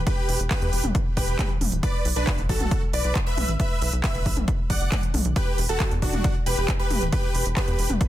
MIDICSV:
0, 0, Header, 1, 5, 480
1, 0, Start_track
1, 0, Key_signature, 1, "minor"
1, 0, Tempo, 441176
1, 72, Time_signature, 4, 2, 24, 8
1, 8791, End_track
2, 0, Start_track
2, 0, Title_t, "Supersaw synth"
2, 0, Program_c, 0, 81
2, 74, Note_on_c, 0, 67, 80
2, 74, Note_on_c, 0, 71, 96
2, 428, Note_off_c, 0, 67, 0
2, 428, Note_off_c, 0, 71, 0
2, 552, Note_on_c, 0, 67, 80
2, 553, Note_on_c, 0, 71, 93
2, 907, Note_off_c, 0, 67, 0
2, 907, Note_off_c, 0, 71, 0
2, 1273, Note_on_c, 0, 67, 81
2, 1273, Note_on_c, 0, 71, 98
2, 1627, Note_off_c, 0, 67, 0
2, 1627, Note_off_c, 0, 71, 0
2, 1992, Note_on_c, 0, 71, 74
2, 1992, Note_on_c, 0, 74, 100
2, 2258, Note_off_c, 0, 71, 0
2, 2258, Note_off_c, 0, 74, 0
2, 2354, Note_on_c, 0, 62, 80
2, 2354, Note_on_c, 0, 71, 96
2, 2619, Note_off_c, 0, 62, 0
2, 2619, Note_off_c, 0, 71, 0
2, 2712, Note_on_c, 0, 66, 76
2, 2713, Note_on_c, 0, 69, 92
2, 3067, Note_off_c, 0, 66, 0
2, 3067, Note_off_c, 0, 69, 0
2, 3194, Note_on_c, 0, 71, 78
2, 3194, Note_on_c, 0, 74, 95
2, 3459, Note_off_c, 0, 71, 0
2, 3459, Note_off_c, 0, 74, 0
2, 3555, Note_on_c, 0, 71, 75
2, 3555, Note_on_c, 0, 76, 92
2, 3819, Note_off_c, 0, 76, 0
2, 3820, Note_off_c, 0, 71, 0
2, 3915, Note_on_c, 0, 71, 79
2, 3915, Note_on_c, 0, 76, 93
2, 4268, Note_off_c, 0, 71, 0
2, 4268, Note_off_c, 0, 76, 0
2, 4394, Note_on_c, 0, 71, 78
2, 4394, Note_on_c, 0, 76, 95
2, 4748, Note_off_c, 0, 71, 0
2, 4748, Note_off_c, 0, 76, 0
2, 5113, Note_on_c, 0, 74, 78
2, 5113, Note_on_c, 0, 78, 95
2, 5467, Note_off_c, 0, 74, 0
2, 5467, Note_off_c, 0, 78, 0
2, 5833, Note_on_c, 0, 67, 76
2, 5833, Note_on_c, 0, 71, 99
2, 6099, Note_off_c, 0, 67, 0
2, 6099, Note_off_c, 0, 71, 0
2, 6192, Note_on_c, 0, 69, 98
2, 6193, Note_on_c, 0, 66, 81
2, 6458, Note_off_c, 0, 66, 0
2, 6458, Note_off_c, 0, 69, 0
2, 6552, Note_on_c, 0, 62, 79
2, 6552, Note_on_c, 0, 66, 92
2, 6907, Note_off_c, 0, 62, 0
2, 6907, Note_off_c, 0, 66, 0
2, 7032, Note_on_c, 0, 67, 80
2, 7032, Note_on_c, 0, 71, 100
2, 7298, Note_off_c, 0, 67, 0
2, 7298, Note_off_c, 0, 71, 0
2, 7393, Note_on_c, 0, 67, 76
2, 7393, Note_on_c, 0, 71, 96
2, 7659, Note_off_c, 0, 67, 0
2, 7659, Note_off_c, 0, 71, 0
2, 7751, Note_on_c, 0, 67, 75
2, 7752, Note_on_c, 0, 71, 93
2, 8106, Note_off_c, 0, 67, 0
2, 8107, Note_off_c, 0, 71, 0
2, 8232, Note_on_c, 0, 67, 75
2, 8233, Note_on_c, 0, 71, 95
2, 8587, Note_off_c, 0, 67, 0
2, 8587, Note_off_c, 0, 71, 0
2, 8791, End_track
3, 0, Start_track
3, 0, Title_t, "Supersaw synth"
3, 0, Program_c, 1, 81
3, 72, Note_on_c, 1, 71, 96
3, 427, Note_off_c, 1, 71, 0
3, 553, Note_on_c, 1, 71, 100
3, 907, Note_off_c, 1, 71, 0
3, 1271, Note_on_c, 1, 71, 99
3, 1626, Note_off_c, 1, 71, 0
3, 1993, Note_on_c, 1, 74, 108
3, 2259, Note_off_c, 1, 74, 0
3, 2351, Note_on_c, 1, 71, 97
3, 2618, Note_off_c, 1, 71, 0
3, 2711, Note_on_c, 1, 69, 94
3, 3066, Note_off_c, 1, 69, 0
3, 3192, Note_on_c, 1, 74, 97
3, 3458, Note_off_c, 1, 74, 0
3, 3552, Note_on_c, 1, 76, 92
3, 3818, Note_off_c, 1, 76, 0
3, 3914, Note_on_c, 1, 76, 101
3, 4268, Note_off_c, 1, 76, 0
3, 4392, Note_on_c, 1, 76, 101
3, 4747, Note_off_c, 1, 76, 0
3, 5115, Note_on_c, 1, 78, 95
3, 5468, Note_off_c, 1, 78, 0
3, 5833, Note_on_c, 1, 71, 110
3, 6099, Note_off_c, 1, 71, 0
3, 6193, Note_on_c, 1, 69, 94
3, 6459, Note_off_c, 1, 69, 0
3, 6553, Note_on_c, 1, 66, 92
3, 6907, Note_off_c, 1, 66, 0
3, 7034, Note_on_c, 1, 71, 99
3, 7299, Note_off_c, 1, 71, 0
3, 7393, Note_on_c, 1, 71, 94
3, 7659, Note_off_c, 1, 71, 0
3, 7753, Note_on_c, 1, 71, 100
3, 8107, Note_off_c, 1, 71, 0
3, 8233, Note_on_c, 1, 71, 103
3, 8587, Note_off_c, 1, 71, 0
3, 8791, End_track
4, 0, Start_track
4, 0, Title_t, "Analog synth bass"
4, 0, Program_c, 2, 38
4, 312, Note_on_c, 2, 28, 98
4, 410, Note_off_c, 2, 28, 0
4, 432, Note_on_c, 2, 28, 84
4, 530, Note_off_c, 2, 28, 0
4, 672, Note_on_c, 2, 40, 76
4, 770, Note_off_c, 2, 40, 0
4, 791, Note_on_c, 2, 28, 89
4, 890, Note_off_c, 2, 28, 0
4, 911, Note_on_c, 2, 28, 81
4, 1010, Note_off_c, 2, 28, 0
4, 1272, Note_on_c, 2, 28, 95
4, 1370, Note_off_c, 2, 28, 0
4, 1392, Note_on_c, 2, 28, 80
4, 1490, Note_off_c, 2, 28, 0
4, 1752, Note_on_c, 2, 28, 96
4, 1850, Note_off_c, 2, 28, 0
4, 1872, Note_on_c, 2, 26, 83
4, 1970, Note_off_c, 2, 26, 0
4, 2232, Note_on_c, 2, 35, 96
4, 2330, Note_off_c, 2, 35, 0
4, 2352, Note_on_c, 2, 35, 79
4, 2450, Note_off_c, 2, 35, 0
4, 2592, Note_on_c, 2, 30, 80
4, 2690, Note_off_c, 2, 30, 0
4, 2712, Note_on_c, 2, 35, 95
4, 2810, Note_off_c, 2, 35, 0
4, 2832, Note_on_c, 2, 35, 79
4, 2930, Note_off_c, 2, 35, 0
4, 3190, Note_on_c, 2, 35, 94
4, 3289, Note_off_c, 2, 35, 0
4, 3311, Note_on_c, 2, 35, 81
4, 3409, Note_off_c, 2, 35, 0
4, 3671, Note_on_c, 2, 35, 95
4, 3769, Note_off_c, 2, 35, 0
4, 3791, Note_on_c, 2, 33, 79
4, 3890, Note_off_c, 2, 33, 0
4, 4152, Note_on_c, 2, 35, 97
4, 4250, Note_off_c, 2, 35, 0
4, 4272, Note_on_c, 2, 35, 84
4, 4370, Note_off_c, 2, 35, 0
4, 4512, Note_on_c, 2, 30, 78
4, 4610, Note_off_c, 2, 30, 0
4, 4633, Note_on_c, 2, 35, 93
4, 4731, Note_off_c, 2, 35, 0
4, 4752, Note_on_c, 2, 35, 81
4, 4850, Note_off_c, 2, 35, 0
4, 5112, Note_on_c, 2, 35, 95
4, 5210, Note_off_c, 2, 35, 0
4, 5233, Note_on_c, 2, 30, 81
4, 5330, Note_off_c, 2, 30, 0
4, 5592, Note_on_c, 2, 35, 94
4, 5690, Note_off_c, 2, 35, 0
4, 5712, Note_on_c, 2, 35, 83
4, 5810, Note_off_c, 2, 35, 0
4, 6073, Note_on_c, 2, 28, 97
4, 6170, Note_off_c, 2, 28, 0
4, 6192, Note_on_c, 2, 28, 80
4, 6290, Note_off_c, 2, 28, 0
4, 6433, Note_on_c, 2, 40, 82
4, 6530, Note_off_c, 2, 40, 0
4, 6553, Note_on_c, 2, 28, 93
4, 6650, Note_off_c, 2, 28, 0
4, 6673, Note_on_c, 2, 28, 80
4, 6771, Note_off_c, 2, 28, 0
4, 7033, Note_on_c, 2, 28, 96
4, 7131, Note_off_c, 2, 28, 0
4, 7153, Note_on_c, 2, 28, 81
4, 7251, Note_off_c, 2, 28, 0
4, 7513, Note_on_c, 2, 28, 92
4, 7610, Note_off_c, 2, 28, 0
4, 7633, Note_on_c, 2, 26, 79
4, 7731, Note_off_c, 2, 26, 0
4, 7992, Note_on_c, 2, 28, 98
4, 8090, Note_off_c, 2, 28, 0
4, 8113, Note_on_c, 2, 28, 83
4, 8210, Note_off_c, 2, 28, 0
4, 8353, Note_on_c, 2, 40, 78
4, 8450, Note_off_c, 2, 40, 0
4, 8471, Note_on_c, 2, 28, 93
4, 8570, Note_off_c, 2, 28, 0
4, 8592, Note_on_c, 2, 28, 80
4, 8690, Note_off_c, 2, 28, 0
4, 8791, End_track
5, 0, Start_track
5, 0, Title_t, "Drums"
5, 72, Note_on_c, 9, 42, 84
5, 73, Note_on_c, 9, 36, 123
5, 181, Note_off_c, 9, 36, 0
5, 181, Note_off_c, 9, 42, 0
5, 312, Note_on_c, 9, 46, 105
5, 421, Note_off_c, 9, 46, 0
5, 432, Note_on_c, 9, 42, 52
5, 541, Note_off_c, 9, 42, 0
5, 552, Note_on_c, 9, 36, 118
5, 552, Note_on_c, 9, 39, 121
5, 552, Note_on_c, 9, 42, 77
5, 661, Note_off_c, 9, 36, 0
5, 661, Note_off_c, 9, 39, 0
5, 661, Note_off_c, 9, 42, 0
5, 672, Note_on_c, 9, 42, 37
5, 781, Note_off_c, 9, 42, 0
5, 792, Note_on_c, 9, 46, 99
5, 900, Note_off_c, 9, 46, 0
5, 912, Note_on_c, 9, 42, 53
5, 912, Note_on_c, 9, 47, 74
5, 1021, Note_off_c, 9, 42, 0
5, 1021, Note_off_c, 9, 47, 0
5, 1032, Note_on_c, 9, 36, 122
5, 1032, Note_on_c, 9, 42, 71
5, 1141, Note_off_c, 9, 36, 0
5, 1141, Note_off_c, 9, 42, 0
5, 1272, Note_on_c, 9, 36, 66
5, 1272, Note_on_c, 9, 46, 116
5, 1381, Note_off_c, 9, 36, 0
5, 1381, Note_off_c, 9, 46, 0
5, 1392, Note_on_c, 9, 42, 53
5, 1501, Note_off_c, 9, 42, 0
5, 1512, Note_on_c, 9, 36, 122
5, 1513, Note_on_c, 9, 39, 120
5, 1513, Note_on_c, 9, 42, 79
5, 1513, Note_on_c, 9, 47, 76
5, 1621, Note_off_c, 9, 36, 0
5, 1621, Note_off_c, 9, 39, 0
5, 1621, Note_off_c, 9, 42, 0
5, 1621, Note_off_c, 9, 47, 0
5, 1753, Note_on_c, 9, 46, 99
5, 1753, Note_on_c, 9, 47, 81
5, 1861, Note_off_c, 9, 46, 0
5, 1861, Note_off_c, 9, 47, 0
5, 1873, Note_on_c, 9, 42, 55
5, 1982, Note_off_c, 9, 42, 0
5, 1992, Note_on_c, 9, 36, 125
5, 1993, Note_on_c, 9, 42, 75
5, 2101, Note_off_c, 9, 36, 0
5, 2102, Note_off_c, 9, 42, 0
5, 2232, Note_on_c, 9, 46, 107
5, 2341, Note_off_c, 9, 46, 0
5, 2353, Note_on_c, 9, 42, 48
5, 2462, Note_off_c, 9, 42, 0
5, 2472, Note_on_c, 9, 36, 122
5, 2473, Note_on_c, 9, 39, 117
5, 2473, Note_on_c, 9, 42, 81
5, 2581, Note_off_c, 9, 36, 0
5, 2582, Note_off_c, 9, 39, 0
5, 2582, Note_off_c, 9, 42, 0
5, 2593, Note_on_c, 9, 42, 36
5, 2702, Note_off_c, 9, 42, 0
5, 2712, Note_on_c, 9, 36, 64
5, 2713, Note_on_c, 9, 46, 101
5, 2821, Note_off_c, 9, 36, 0
5, 2822, Note_off_c, 9, 46, 0
5, 2833, Note_on_c, 9, 42, 50
5, 2833, Note_on_c, 9, 47, 76
5, 2942, Note_off_c, 9, 42, 0
5, 2942, Note_off_c, 9, 47, 0
5, 2953, Note_on_c, 9, 36, 122
5, 2953, Note_on_c, 9, 42, 76
5, 3061, Note_off_c, 9, 36, 0
5, 3062, Note_off_c, 9, 42, 0
5, 3193, Note_on_c, 9, 46, 111
5, 3301, Note_off_c, 9, 46, 0
5, 3312, Note_on_c, 9, 42, 53
5, 3421, Note_off_c, 9, 42, 0
5, 3432, Note_on_c, 9, 39, 115
5, 3432, Note_on_c, 9, 42, 74
5, 3433, Note_on_c, 9, 36, 126
5, 3541, Note_off_c, 9, 39, 0
5, 3541, Note_off_c, 9, 42, 0
5, 3542, Note_off_c, 9, 36, 0
5, 3672, Note_on_c, 9, 46, 100
5, 3672, Note_on_c, 9, 47, 82
5, 3781, Note_off_c, 9, 46, 0
5, 3781, Note_off_c, 9, 47, 0
5, 3792, Note_on_c, 9, 42, 52
5, 3901, Note_off_c, 9, 42, 0
5, 3913, Note_on_c, 9, 36, 123
5, 3913, Note_on_c, 9, 42, 76
5, 4022, Note_off_c, 9, 36, 0
5, 4022, Note_off_c, 9, 42, 0
5, 4153, Note_on_c, 9, 46, 103
5, 4262, Note_off_c, 9, 46, 0
5, 4273, Note_on_c, 9, 42, 52
5, 4382, Note_off_c, 9, 42, 0
5, 4392, Note_on_c, 9, 39, 117
5, 4392, Note_on_c, 9, 42, 75
5, 4393, Note_on_c, 9, 36, 125
5, 4501, Note_off_c, 9, 39, 0
5, 4501, Note_off_c, 9, 42, 0
5, 4502, Note_off_c, 9, 36, 0
5, 4513, Note_on_c, 9, 42, 35
5, 4621, Note_off_c, 9, 42, 0
5, 4632, Note_on_c, 9, 46, 101
5, 4633, Note_on_c, 9, 36, 65
5, 4741, Note_off_c, 9, 46, 0
5, 4742, Note_off_c, 9, 36, 0
5, 4752, Note_on_c, 9, 42, 48
5, 4752, Note_on_c, 9, 47, 75
5, 4861, Note_off_c, 9, 42, 0
5, 4861, Note_off_c, 9, 47, 0
5, 4873, Note_on_c, 9, 36, 125
5, 4873, Note_on_c, 9, 42, 70
5, 4981, Note_off_c, 9, 42, 0
5, 4982, Note_off_c, 9, 36, 0
5, 5113, Note_on_c, 9, 36, 65
5, 5113, Note_on_c, 9, 46, 113
5, 5221, Note_off_c, 9, 46, 0
5, 5222, Note_off_c, 9, 36, 0
5, 5232, Note_on_c, 9, 42, 53
5, 5341, Note_off_c, 9, 42, 0
5, 5353, Note_on_c, 9, 36, 123
5, 5353, Note_on_c, 9, 39, 115
5, 5353, Note_on_c, 9, 42, 74
5, 5353, Note_on_c, 9, 47, 80
5, 5462, Note_off_c, 9, 36, 0
5, 5462, Note_off_c, 9, 39, 0
5, 5462, Note_off_c, 9, 42, 0
5, 5462, Note_off_c, 9, 47, 0
5, 5472, Note_on_c, 9, 42, 36
5, 5581, Note_off_c, 9, 42, 0
5, 5592, Note_on_c, 9, 46, 103
5, 5592, Note_on_c, 9, 47, 84
5, 5701, Note_off_c, 9, 46, 0
5, 5701, Note_off_c, 9, 47, 0
5, 5713, Note_on_c, 9, 42, 51
5, 5821, Note_off_c, 9, 42, 0
5, 5832, Note_on_c, 9, 42, 75
5, 5833, Note_on_c, 9, 36, 115
5, 5941, Note_off_c, 9, 36, 0
5, 5941, Note_off_c, 9, 42, 0
5, 6072, Note_on_c, 9, 46, 103
5, 6181, Note_off_c, 9, 46, 0
5, 6193, Note_on_c, 9, 42, 51
5, 6302, Note_off_c, 9, 42, 0
5, 6313, Note_on_c, 9, 36, 119
5, 6313, Note_on_c, 9, 39, 112
5, 6313, Note_on_c, 9, 42, 76
5, 6421, Note_off_c, 9, 39, 0
5, 6421, Note_off_c, 9, 42, 0
5, 6422, Note_off_c, 9, 36, 0
5, 6433, Note_on_c, 9, 42, 37
5, 6542, Note_off_c, 9, 42, 0
5, 6553, Note_on_c, 9, 36, 65
5, 6553, Note_on_c, 9, 46, 93
5, 6662, Note_off_c, 9, 36, 0
5, 6662, Note_off_c, 9, 46, 0
5, 6673, Note_on_c, 9, 42, 50
5, 6673, Note_on_c, 9, 47, 82
5, 6782, Note_off_c, 9, 42, 0
5, 6782, Note_off_c, 9, 47, 0
5, 6793, Note_on_c, 9, 36, 126
5, 6793, Note_on_c, 9, 42, 71
5, 6902, Note_off_c, 9, 36, 0
5, 6902, Note_off_c, 9, 42, 0
5, 7032, Note_on_c, 9, 46, 106
5, 7141, Note_off_c, 9, 46, 0
5, 7153, Note_on_c, 9, 42, 50
5, 7262, Note_off_c, 9, 42, 0
5, 7273, Note_on_c, 9, 36, 120
5, 7273, Note_on_c, 9, 39, 115
5, 7273, Note_on_c, 9, 42, 77
5, 7381, Note_off_c, 9, 36, 0
5, 7382, Note_off_c, 9, 39, 0
5, 7382, Note_off_c, 9, 42, 0
5, 7512, Note_on_c, 9, 46, 97
5, 7512, Note_on_c, 9, 47, 89
5, 7621, Note_off_c, 9, 46, 0
5, 7621, Note_off_c, 9, 47, 0
5, 7632, Note_on_c, 9, 42, 51
5, 7741, Note_off_c, 9, 42, 0
5, 7752, Note_on_c, 9, 42, 78
5, 7753, Note_on_c, 9, 36, 116
5, 7861, Note_off_c, 9, 36, 0
5, 7861, Note_off_c, 9, 42, 0
5, 7992, Note_on_c, 9, 46, 100
5, 8100, Note_off_c, 9, 46, 0
5, 8112, Note_on_c, 9, 42, 52
5, 8221, Note_off_c, 9, 42, 0
5, 8232, Note_on_c, 9, 36, 119
5, 8232, Note_on_c, 9, 39, 118
5, 8232, Note_on_c, 9, 42, 81
5, 8341, Note_off_c, 9, 36, 0
5, 8341, Note_off_c, 9, 39, 0
5, 8341, Note_off_c, 9, 42, 0
5, 8352, Note_on_c, 9, 42, 37
5, 8461, Note_off_c, 9, 42, 0
5, 8472, Note_on_c, 9, 46, 91
5, 8581, Note_off_c, 9, 46, 0
5, 8592, Note_on_c, 9, 42, 50
5, 8592, Note_on_c, 9, 47, 83
5, 8701, Note_off_c, 9, 42, 0
5, 8701, Note_off_c, 9, 47, 0
5, 8712, Note_on_c, 9, 36, 115
5, 8712, Note_on_c, 9, 42, 72
5, 8791, Note_off_c, 9, 36, 0
5, 8791, Note_off_c, 9, 42, 0
5, 8791, End_track
0, 0, End_of_file